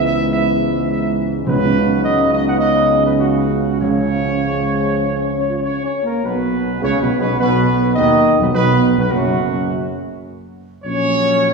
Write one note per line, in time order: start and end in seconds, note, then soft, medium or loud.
0.00 1.42 C#2 medium
0.00 1.43 G#2 medium
0.00 1.43 E3 medium
0.00 1.29 B3 medium
0.00 1.29 E4 medium
0.06 0.31 E5 loud
0.33 0.86 E5 loud
0.90 1.16 E5 medium
1.45 5.90 C#2 medium
1.45 5.93 C#3 medium
1.45 2.29 C#3 medium
1.45 3.65 F#3 medium
1.45 3.78 B3 medium
1.45 3.78 D#4 medium
1.45 2.00 B4 loud
2.03 2.30 D#5 medium
2.32 2.46 D#5 medium
2.48 2.61 F#5 medium
2.60 3.01 D#5 medium
3.05 3.12 B4 medium
3.19 3.77 F#4 medium
3.80 4.69 C#3 medium
3.80 5.89 F3 medium
3.80 4.34 G#3 medium
3.80 4.34 C#4 medium
3.80 5.58 C#5 loud
4.44 5.00 G#3 medium
5.05 5.32 C#4 medium
5.34 5.48 C#4 medium
5.49 5.55 F4 medium
5.62 5.81 C#4 medium
5.62 5.82 C#5 medium
5.82 6.02 C#4 medium
5.82 6.03 C#5 medium
6.03 6.22 A#3 medium
6.03 6.23 A#4 medium
6.23 6.78 B1 medium
6.23 6.77 B2 medium
6.23 6.78 B3 medium
6.23 6.82 B4 loud
6.80 6.91 C#2 medium
6.80 6.99 C#3 medium
6.80 6.90 C#4 medium
6.80 7.00 C#5 medium
7.00 7.10 B1 medium
7.00 7.09 B2 medium
7.00 7.19 B3 medium
7.00 7.20 B4 medium
7.19 7.38 B1 medium
7.19 7.37 B2 medium
7.19 7.29 B3 medium
7.19 7.38 B4 medium
7.38 7.93 B1 medium
7.38 7.92 B2 medium
7.38 7.93 B3 medium
7.38 7.93 B4 loud
7.95 8.37 D#2 medium
7.95 8.37 D#3 medium
7.95 8.40 D#4 medium
7.95 8.36 D#5 loud
8.39 8.53 B1 medium
8.39 8.52 B2 medium
8.39 8.46 B3 medium
8.39 8.48 B4 medium
8.54 8.95 B1 medium
8.54 8.94 B2 medium
8.54 8.95 B3 medium
8.54 8.88 B4 loud
8.97 9.11 B1 medium
8.97 9.04 B2 medium
8.97 9.04 B3 medium
8.97 9.12 B4 medium
9.12 9.95 F#1 medium
9.12 9.95 F#2 medium
9.12 9.95 F#3 medium
9.12 9.99 F#4 medium
10.84 11.54 A#1 medium
10.84 11.54 F#3 medium
10.84 11.54 C#4 medium
10.84 11.54 C#4 loud
10.84 11.54 C#5 loud